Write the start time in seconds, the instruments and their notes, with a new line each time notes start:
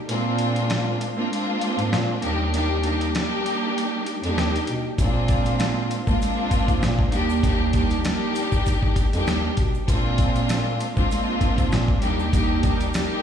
0.08 bass clarinet A#2, string section G#3 A#3 C4 D4 F4, closed hi-hat
0.39 closed hi-hat
0.56 closed hi-hat
0.70 cross-stick, snare, closed hi-hat
1.01 closed hi-hat
1.16 string section G#3 A#3 C4 D4 F4
1.31 string section G#3 A#3 C4 D4 F4, closed hi-hat
1.61 closed hi-hat
1.79 bass clarinet G#2, closed hi-hat
1.93 bass clarinet A#2, cross-stick, snare, closed hi-hat
2.22 bass clarinet D#2, string section G3 A#3 D4 D#4 G4, closed hi-hat
2.53 string section G3 A#3 D4 D#4 G4, closed hi-hat
2.83 string section G3 A#3 D4 D#4 G4, closed hi-hat
3.01 closed hi-hat
3.14 string section G3 A#3 D4 D#4 G4, cross-stick, snare, closed hi-hat
3.46 closed hi-hat
3.78 closed hi-hat
4.06 closed hi-hat
4.23 bass clarinet F2, string section G3 A#3 D4 D#4 G4, closed hi-hat
4.37 bass clarinet D#2, cross-stick, snare, closed hi-hat
4.56 closed hi-hat
4.67 bass clarinet B2, closed hi-hat
4.98 bass clarinet A#2, string section G#3 A#3 C4 D4 F4, kick, closed hi-hat, shaker
5.28 kick, closed hi-hat, shaker
5.46 closed hi-hat, shaker
5.59 cross-stick, snare, closed hi-hat, shaker
5.91 closed hi-hat, shaker
6.06 string section G#3 A#3 C4 D4 F4, kick, shaker
6.20 string section G#3 A#3 C4 D4 F4, closed hi-hat, shaker
6.51 kick, closed hi-hat, shaker
6.68 bass clarinet G#2, kick, closed hi-hat, shaker
6.82 bass clarinet A#2, cross-stick, snare, closed hi-hat, shaker
6.99 kick
7.12 bass clarinet D#2, string section G3 A#3 D4 D#4 G4, closed hi-hat, shaker
7.30 shaker
7.43 string section G3 A#3 D4 D#4 G4, kick, closed hi-hat, shaker
7.73 string section G3 A#3 D4 D#4 G4, kick, closed hi-hat, shaker
7.90 closed hi-hat, shaker
8.04 string section G3 A#3 D4 D#4 G4, cross-stick, snare, closed hi-hat, shaker
8.35 closed hi-hat, shaker
8.52 kick, shaker
8.66 kick, closed hi-hat, shaker
8.83 kick
8.96 kick, closed hi-hat, shaker
9.13 bass clarinet F2, string section G3 A#3 D4 D#4 G4, closed hi-hat, shaker
9.27 bass clarinet D#2, cross-stick, snare, closed hi-hat, shaker
9.57 bass clarinet B2, kick, closed hi-hat, shaker
9.75 shaker
9.88 bass clarinet A#2, string section G#3 A#3 C4 D4 F4, kick, closed hi-hat, shaker
10.18 kick, closed hi-hat, shaker
10.35 closed hi-hat, shaker
10.49 cross-stick, snare, closed hi-hat, shaker
10.80 closed hi-hat, shaker
10.96 string section G#3 A#3 C4 D4 F4, kick, shaker
11.10 string section G#3 A#3 C4 D4 F4, closed hi-hat, shaker
11.41 kick, closed hi-hat, shaker
11.58 bass clarinet G#2, kick, closed hi-hat, shaker
11.72 bass clarinet A#2, cross-stick, snare, closed hi-hat, shaker
11.88 kick
12.01 bass clarinet D#2, string section G3 A#3 D4 D#4 G4, closed hi-hat, shaker
12.19 shaker
12.32 string section G3 A#3 D4 D#4 G4, kick, closed hi-hat, shaker
12.62 string section G3 A#3 D4 D#4 G4, kick, closed hi-hat, shaker
12.80 closed hi-hat, shaker
12.93 string section G3 A#3 D4 D#4 G4, cross-stick, snare, closed hi-hat, shaker